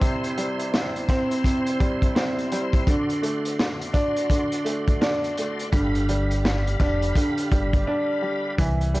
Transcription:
0.00 0.02 C3 medium
0.00 1.43 C3 medium
0.00 0.38 G3 medium
0.00 1.09 C4 loud
0.00 2.84 E4 medium
0.00 2.84 C5 medium
0.00 5.69 C6 medium
0.00 kick loud
0.00 closed hi-hat loud
0.24 closed hi-hat medium
0.38 1.78 G3 medium
0.38 closed hi-hat medium
0.59 closed hi-hat medium
0.74 snare loud
0.96 closed hi-hat medium
1.09 2.14 C4 loud
1.09 kick loud
1.09 snare soft
1.09 closed hi-hat medium
1.31 closed hi-hat medium
1.44 2.87 C3 medium
1.44 kick medium
1.44 closed hi-hat loud
1.67 closed hi-hat medium
1.80 2.51 G3 medium
1.80 kick loud
1.80 closed hi-hat medium
2.02 kick medium
2.02 closed hi-hat soft
2.15 2.87 C4 loud
2.15 snare loud
2.15 snare medium
2.39 closed hi-hat soft
2.52 2.88 G3 medium
2.52 closed hi-hat medium
2.73 kick loud
2.73 closed hi-hat medium
2.87 4.29 D3 medium
2.87 5.70 F#4 medium
2.87 5.70 D5 medium
2.87 kick loud
2.87 closed hi-hat loud
3.10 closed hi-hat medium
3.22 4.63 A3 medium
3.22 closed hi-hat medium
3.45 closed hi-hat medium
3.59 snare loud
3.82 closed hi-hat medium
3.93 5.00 D4 loud
3.93 kick loud
3.93 closed hi-hat medium
4.16 closed hi-hat medium
4.30 5.72 D3 medium
4.30 kick medium
4.30 closed hi-hat loud
4.52 closed hi-hat medium
4.65 5.37 A3 medium
4.65 closed hi-hat medium
4.88 kick medium
4.88 closed hi-hat soft
5.01 5.73 D4 loud
5.01 snare loud
5.01 snare medium
5.24 closed hi-hat soft
5.37 5.74 A3 medium
5.37 closed hi-hat medium
5.59 closed hi-hat medium
5.72 6.76 G1 loud
5.72 7.15 D3 medium
5.72 8.55 G4 medium
5.72 8.55 F5 medium
5.72 8.55 B5 medium
5.72 kick loud
5.72 closed hi-hat loud
5.95 closed hi-hat medium
6.09 7.50 G3 medium
6.09 closed hi-hat medium
6.31 closed hi-hat medium
6.45 snare loud
6.67 closed hi-hat medium
6.80 7.11 F1 medium
6.80 7.86 D4 loud
6.80 kick loud
6.80 snare soft
6.80 closed hi-hat medium
7.02 closed hi-hat medium
7.16 8.59 D3 medium
7.16 kick medium
7.16 closed hi-hat loud
7.38 closed hi-hat medium
7.52 7.83 G1 medium
7.52 8.21 G3 medium
7.52 kick loud
7.52 closed hi-hat medium
7.73 kick medium
7.73 closed hi-hat soft
7.87 8.59 D4 loud
8.22 8.58 G3 medium
8.58 9.00 C2 loud
8.58 9.00 E3 medium
8.58 kick loud
8.58 closed hi-hat medium
8.81 closed hi-hat medium
8.94 9.00 G3 medium
8.94 closed hi-hat medium

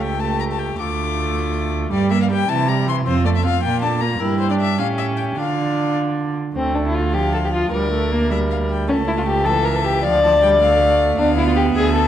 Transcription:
0.00 0.79 C#2 soft
0.00 0.20 A3 soft
0.00 0.20 G4 soft
0.00 0.21 G5 medium
0.20 0.78 A3 soft
0.20 0.81 G4 soft
0.20 0.40 A5 medium
0.40 0.44 A#5 medium
0.52 0.61 A5 medium
0.59 0.78 G5 medium
0.79 1.90 D2 medium
0.79 1.90 A3 medium
0.79 1.92 F4 soft
0.79 1.72 D6 medium
1.92 2.43 G2 medium
1.92 2.12 G3 soft
1.92 2.13 G4 medium
1.92 2.10 D5 medium
2.11 2.30 A#3 soft
2.11 2.32 A#4 soft
2.11 2.21 E5 medium
2.22 2.26 F5 medium
2.29 2.48 G3 soft
2.29 2.49 G4 soft
2.29 2.51 G5 medium
2.48 2.99 C3 medium
2.48 2.69 E3 soft
2.48 2.70 E4 medium
2.48 2.70 A5 medium
2.68 2.88 G3 soft
2.68 2.89 G4 soft
2.68 2.87 A#5 medium
2.86 3.05 E3 soft
2.86 3.06 E4 soft
2.86 2.96 C6 medium
3.06 3.56 F2 medium
3.06 3.26 C4 medium
3.06 3.28 F4 medium
3.06 3.25 C5 medium
3.25 3.45 A3 soft
3.25 3.47 A4 soft
3.25 3.29 D5 medium
3.36 3.45 E5 medium
3.44 3.63 C4 soft
3.44 3.64 F4 soft
3.44 3.63 F5 medium
3.63 4.14 A#2 medium
3.63 3.84 A#3 soft
3.63 3.85 F4 medium
3.63 3.81 G5 medium
3.81 4.03 D4 soft
3.81 4.04 A4 soft
3.81 4.02 A5 medium
4.00 4.21 A#3 soft
4.00 4.21 F4 soft
4.00 4.22 A#5 medium
4.20 4.80 G2 medium
4.20 4.51 E4 soft
4.20 4.75 G4 medium
4.20 4.39 A#4 medium
4.40 4.49 C5 medium
4.50 4.80 D4 medium
4.50 4.54 D5 medium
4.60 4.78 E5 medium
4.78 5.36 A2 medium
4.78 5.39 C#4 soft
4.78 5.39 G4 soft
4.78 4.87 F5 medium
4.98 5.06 E5 medium
5.17 5.25 G5 medium
5.37 6.34 D3 soft
5.37 6.36 D4 soft
5.37 6.36 F4 soft
5.37 5.95 F5 medium
6.55 7.69 D2 medium
6.55 7.15 A3 medium
6.55 6.76 C4 medium
6.75 6.85 D4 soft
6.86 6.96 E4 medium
6.95 7.15 F4 medium
7.13 7.72 F3 soft
7.13 7.33 G4 medium
7.13 7.69 F5 medium
7.34 7.38 A4 medium
7.45 7.48 G4 medium
7.53 7.71 F4 medium
7.72 8.90 D2 medium
7.72 7.91 G3 medium
7.72 8.67 A#4 medium
7.72 8.30 D5 medium
7.92 8.13 A3 medium
8.12 8.32 A#3 medium
8.31 8.89 G3 soft
8.31 8.38 E5 medium
8.51 8.58 F5 medium
8.70 8.89 G5 medium
8.88 10.06 C#2 medium
8.88 9.47 A3 medium
8.88 8.96 C#4 medium
8.88 9.47 A5 medium
9.08 9.11 E4 medium
9.17 9.21 F4 medium
9.26 9.47 G4 medium
9.45 10.06 E3 medium
9.45 9.66 A4 medium
9.45 10.05 E5 medium
9.65 9.77 A#4 medium
9.75 9.86 A4 medium
9.84 10.03 G4 medium
10.03 11.18 D2 medium
10.03 10.24 F3 medium
10.03 10.97 D5 medium
10.03 10.23 F5 medium
10.24 10.32 F3 medium
10.24 10.41 A5 medium
10.42 10.62 G3 medium
10.42 10.50 G5 medium
10.60 11.21 A3 medium
10.60 11.17 F5 medium
11.18 11.74 D2 medium
11.18 12.08 B3 medium
11.18 11.36 D4 medium
11.18 11.74 F5 medium
11.37 11.46 E4 medium
11.47 11.51 F4 medium
11.56 11.64 G4 medium
11.75 12.08 D2 medium
11.75 11.94 G#4 medium
11.75 12.08 E5 medium
11.94 12.08 A4 medium

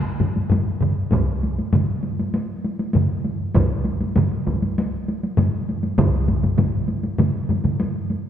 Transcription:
0.20 taiko low-mid medium
0.20 taiko mid medium
0.20 taiko high medium
0.36 taiko high medium
0.50 taiko low-mid medium
0.50 taiko mid medium
0.50 taiko high medium
0.81 taiko low-mid medium
0.81 taiko mid medium
1.11 taiko medium
1.11 taiko low-mid medium
1.11 taiko mid medium
1.11 taiko high medium
1.43 taiko high medium
1.59 taiko high soft
1.73 taiko low-mid medium
1.73 taiko mid medium
1.73 taiko high medium
2.03 taiko high soft
2.19 taiko high medium
2.34 taiko high medium
2.64 taiko high medium
2.79 taiko high medium
2.93 taiko low-mid medium
2.93 taiko mid medium
2.93 taiko high medium
3.25 taiko high medium
3.55 taiko medium
3.55 taiko low-mid medium
3.55 taiko mid medium
3.55 taiko high medium
3.84 taiko high medium
4.01 taiko high medium
4.16 taiko low-mid medium
4.16 taiko mid medium
4.16 taiko high medium
4.47 taiko medium
4.47 taiko high medium
4.62 taiko high medium
4.78 taiko high medium
5.08 taiko high medium
5.23 taiko high medium
5.37 taiko low-mid loud
5.37 taiko mid medium
5.37 taiko high medium
5.69 taiko high soft
5.83 taiko high medium
5.98 taiko medium
5.98 taiko low-mid medium
5.98 taiko mid loud
5.98 taiko high medium
6.28 taiko low-mid medium
6.28 taiko mid medium
6.28 taiko high medium
6.43 taiko low-mid medium
6.43 taiko mid medium
6.43 taiko high medium
6.58 taiko low-mid medium
6.58 taiko mid medium
6.58 taiko high medium
6.88 taiko high soft
7.03 taiko high medium
7.18 taiko low-mid medium
7.18 taiko mid medium
7.18 taiko high medium
7.49 taiko low-mid medium
7.49 taiko mid medium
7.49 taiko high medium
7.64 taiko low-mid medium
7.64 taiko mid medium
7.64 taiko high medium
7.80 taiko high medium
8.10 taiko high soft

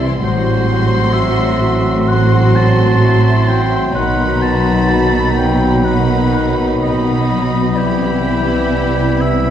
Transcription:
0.00 0.20 C2 medium
0.00 0.21 C3 medium
0.00 0.28 C3 soft
0.00 0.23 E3 medium
0.00 0.28 G3 soft
0.00 1.11 G3 medium
0.00 2.55 C4 soft
0.00 0.22 E4 medium
0.00 0.28 E4 soft
0.00 0.21 C6 medium
0.22 3.91 A1 medium
0.22 3.91 A2 medium
0.22 2.06 A2 soft
0.22 2.03 F#3 medium
0.22 3.91 F#3 medium
0.22 3.92 C4 medium
0.22 3.91 F#4 medium
0.22 2.03 F#4 medium
0.22 1.14 C5 medium
0.22 2.03 C6 medium
0.22 4.91 C6 soft
0.70 1.60 A3 soft
1.13 3.96 F#3 medium
1.13 3.02 F#4 soft
1.13 2.09 E5 medium
1.61 3.48 A3 soft
2.07 3.99 A2 soft
2.07 3.92 F#3 medium
2.07 3.01 F#4 medium
2.07 2.57 F#5 medium
2.07 3.91 C6 medium
2.55 3.99 C4 soft
2.55 3.49 A5 medium
3.03 3.96 E4 medium
3.03 6.93 F#4 soft
3.48 7.39 A3 soft
3.48 3.94 G5 medium
3.94 7.74 B1 medium
3.94 5.83 B2 soft
3.94 7.74 B2 medium
3.94 7.60 D#3 medium
3.94 7.47 F#3 medium
3.94 5.81 F#3 medium
3.94 9.50 B3 medium
3.94 7.48 D#4 medium
3.94 5.81 D#4 soft
3.94 4.43 F#5 medium
3.94 5.80 B5 medium
4.42 5.35 F#3 soft
4.42 5.37 A5 medium
4.90 6.80 D#4 soft
4.90 9.44 B5 medium
5.36 7.28 F#3 soft
5.36 5.86 G5 medium
5.84 7.82 B2 soft
5.84 6.79 F#3 medium
5.84 6.80 D#4 medium
5.84 6.54 F#5 medium
5.84 6.79 B5 medium
6.32 9.50 B3 soft
6.80 7.75 F#3 medium
6.80 7.81 D#4 soft
6.80 7.76 D#4 medium
6.80 7.78 D#5 medium
6.80 7.76 B5 medium
7.30 7.81 F#3 soft
7.75 9.50 C2 medium
7.75 9.50 C3 soft
7.75 9.50 E3 soft
7.75 9.50 E3 medium
7.75 9.50 G3 medium
7.75 9.50 E4 soft
7.75 9.22 G4 medium
7.75 9.50 B5 medium
8.25 9.20 G3 soft
8.72 9.50 E4 soft
9.20 9.50 E5 medium

